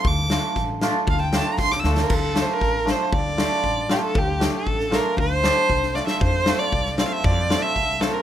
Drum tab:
CC |--------|--------|x-------|--------|
SD |--o-o-o-|--o-oooo|--o---o-|--o---o-|
BD |o---o---|o---o---|o---o---|o---o---|

CC |--------|--------|--------|--------|
SD |--o--oo-|--o--ooo|--o--oo-|--o---o-|
BD |o---o---|o---o---|o---o---|o---o---|